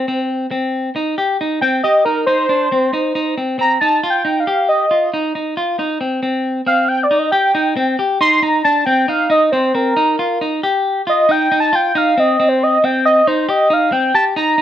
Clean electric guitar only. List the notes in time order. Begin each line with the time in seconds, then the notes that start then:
0.08 C4
0.51 C4
0.96 D#4
1.18 G4
1.41 D#4
1.62 C4
1.84 G4
2.06 D#4
2.27 D#4
2.49 D4
2.72 C4
2.93 D#4
3.15 D#4
3.38 C4
3.59 C4
3.81 D#4
4.03 F4
4.25 D#4
4.47 G4
4.91 F4
5.14 D#4
5.35 D#4
5.57 F4
5.79 D#4
6.01 C4
6.23 C4
6.67 C4
7.11 D#4
7.32 G4
7.55 D#4
7.77 C4
7.99 G4
8.21 D#4
8.43 D#4
8.65 D4
8.87 C4
9.08 D#4
9.30 D#4
9.53 C4
9.75 C4
9.97 D#4
10.19 F4
10.41 D#4
10.63 G4
11.07 F4
11.29 D#4
11.52 D#4
11.73 F4
11.95 D#4
12.18 C4
12.40 C4
12.84 C4
13.27 D#4
13.49 G4
13.70 D#4
13.92 C4
14.14 G4
14.36 D#4
14.58 D#4